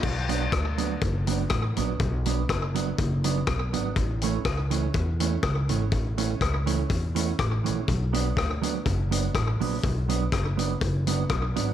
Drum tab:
CC |x-------|--------|--------|--------|
HH |-xxxxxxx|xxxxxxxx|xxxxxxxx|xxxxxxxx|
SD |--r---r-|--r---r-|--r---r-|--r---r-|
BD |o-o-o-o-|o-o-o-o-|o-o-o-o-|o-o-o-o-|

CC |--------|--------|
HH |xxxxxxxo|xxxxxxxx|
SD |--r---r-|--r---r-|
BD |o-o-o-o-|o-o-o-o-|